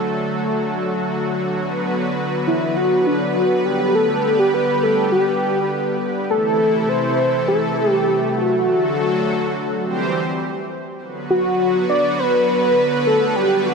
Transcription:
Already playing: D3 F#3 A3 F#4 A4
1.60 B3 B4
2.48 E4
2.77 F#4
3.07 D4
3.36 F#4
3.65 G4
3.95 G3 G4 A4
4.39 G4
4.54 B4
4.83 A4
5.12 G4
6.30 C3 E3 A3 E4 A4
6.89 C5
7.48 A4
7.90 G4
8.07 G4
8.37 F#4
8.66 D3 F#3 F#4 A4
9.83 E3 G3 C4 G4 C5
11.01 D3 F#3 B3 F#4 B4
11.30 F#4
11.89 D5
12.19 B4
13.07 A4
13.36 G3 D4 G4
13.65 F#4

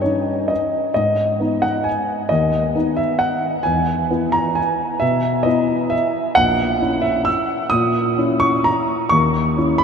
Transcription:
Already playing: G2 D#5
0.02 C#4 D#4 C#5
0.48 D#5
0.94 G#2 D#5
1.40 B3 D#4
1.62 F#5
1.84 G#5
2.29 D#2 D#5
2.75 B3 D#4
2.97 E5
3.19 F#5
3.63 E2 G#5
4.11 B3 E4
4.32 A#5
4.55 G#5
5.00 B2 E5
5.43 B3 E4 D#5
5.90 E5
6.35 A#1 F#5
6.81 C#4 E4
7.02 E5
7.25 E6
7.70 A#2 D#6
8.18 C#4 E4
8.40 C#6
8.64 A#5
9.09 D#2 C#6
9.57 C#4 E4
9.78 B5

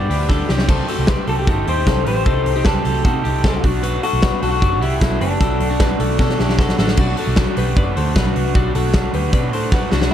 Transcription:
Already playing: D4 D5
0.08 D2 G3 B3 D4 E4 G4, open hi-hat
0.29 G2 D3 G3 B3 D4 G4 A4, kick, snare
0.49 C2 A3 C4 D#4 G4, snare
0.59 snare
0.68 C3 D#3 A3 C4 G4 A4 C5, kick, crash
0.87 A3 C4 F#4 G4 A4, open hi-hat
0.99 C2
1.07 C3 D#3 A3 C4 G4 B4, kick, snare, closed hi-hat
1.26 C2 A3 C4 F#4 G4 A4, open hi-hat
1.39 G4
1.46 G1 D#3 A3 C4 D#4 F#4 G4 A4, kick, closed hi-hat
1.66 D#2 A3 C4 D#4 G4 C5, open hi-hat
1.85 C2 C3 D#3 A3 C4 D#4 G4 A4, kick, snare, closed hi-hat
2.04 A1 A3 C4 G4 B4 C5, open hi-hat
2.08 G4
2.25 C2 C3 D#3 A3 C4 D#4 G4 A4, kick, closed hi-hat
2.44 C2 A3 C4 G4, open hi-hat
2.56 D#4 G4
2.64 C3 D#3 A3 C4 G4 A4 B4, kick, snare, closed hi-hat
2.85 C2 A3 C4 F#4 G4 A4, open hi-hat
3.03 C3 D#3 A3 C4 D#4 F#4 G4 A4, kick, closed hi-hat
3.23 C2 A3 C4 D#4 G4, open hi-hat
3.43 C3 D#3 A3 C4 D#4 G4 A4, kick, snare, closed hi-hat
3.62 B1 A3 D4 F#4, kick, open hi-hat
3.82 B2 F#3 A3 D4 F#4 B4, closed hi-hat
4.02 A3 D4 F#4 A4, open hi-hat
4.13 B1
4.21 B2 F#3 A3 D4 F#4 B4, kick, snare, closed hi-hat
4.41 B1 A3 D4 F#4 A4, open hi-hat
4.51 F#4
4.62 F#1 F#3 A3 D4 F#4, kick, closed hi-hat
4.81 C2 A3 D4 E4 F#4 G4, open hi-hat
5.01 B1 B2 F#3 A3 D4 F#4 A4, kick, snare, closed hi-hat
5.20 F#1 A3 D4 F#4 G4 B4, open hi-hat
5.39 B1 B2 F#3 A3 D4 F#4 A4, kick, closed hi-hat
5.59 B1 A3 D4 F#4, open hi-hat
5.70 D4 F#4
5.78 B2 F#3 A3 D4 F#4 B4, kick, snare, closed hi-hat
5.98 B1 A3 D4 F#4 A4, open hi-hat
6.18 B2 F#3 A3 D4 F#4 A4, kick, snare
6.29 snare
6.37 B1 A3 D4 E4 F#4 G4, snare
6.49 snare
6.57 B2 F#3 A3 D4 F#4 A4, kick, snare
6.69 snare
6.77 A1 A3 D4 F#4 A4, snare
6.88 snare
6.97 B1 B2 F#3 A3 D4 F#4, kick, crash
7.16 A3 D4 F#4 A4, open hi-hat
7.27 B1
7.36 F#3 A3 D4 F#4, kick, snare, closed hi-hat
7.56 B1 A3 D4 F#4 G4 B4, open hi-hat
7.75 F#1 B2 F#3 A3 D4 F#4 B4 D5, kick, closed hi-hat
7.94 D2 A3 D4 F#4 A4 C5, open hi-hat
8.14 B1 F#3 A3 D4 F#4 B4, kick, snare, closed hi-hat
8.33 C2 A3 D4 F#4, open hi-hat
8.54 B1 B2 F#3 A3 D4 F#4, kick, closed hi-hat
8.74 B1 A3 D4 F#4 A4, open hi-hat
8.93 F#3 A3 D4 F#4, kick, snare, closed hi-hat
9.12 D2 A3 D4 F#4 G4 B4, open hi-hat
9.32 B2 F#3 A3 D4 F#4 B4 D5, kick, closed hi-hat
9.51 A2 A3 D4 F#4 A4 C5, open hi-hat
9.71 F#3 A3 D4 F#4 B4, kick, snare
9.90 C2 A3 D4 F#4, snare
10.01 snare

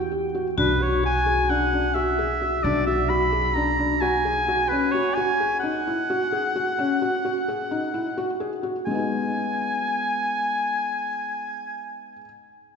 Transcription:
Already playing: E2 G4
0.11 G4
0.35 F#4
0.57 B1 D4 F#4 B4
0.80 F#4 C#5
1.03 F#4 G#5
1.26 G#4
1.49 D4 F#5
1.73 D4
1.94 F#4 E5
2.19 G#4
2.41 F#4
2.64 B1 D4 D5
2.87 F#4 E5
3.09 F#4 B5
3.32 G#4
3.54 D4 A#5
3.79 D4
4.01 F#4 G#5
4.25 G#4
4.48 F#4
4.69 C#4 B4
4.91 F#4 C#5
5.15 F#4 G#5
5.40 G#4
5.60 D#4 F#5
5.87 E4
6.10 F#4
6.32 G#4
6.55 F#4
6.79 C#4
7.02 F#4
7.25 F#4
7.48 G#4
7.71 D#4
7.94 E4
8.17 F#4
8.40 G#4
8.63 F#4
8.86 G#3 G#5
8.91 B3 D#4
8.99 G#4

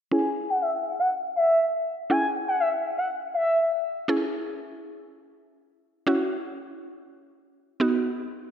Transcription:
0.11 C#4 E4 G#4 G#5
0.50 F#5
0.62 E5
1.00 F#5
1.36 E5
2.10 C#4 E4 G#4 G#5
2.48 F#5
2.60 E5
2.98 F#5
3.34 E5
4.08 C#4 E4 G#4
6.07 C#4 E4 F#4
7.80 B3 D#4 F#4

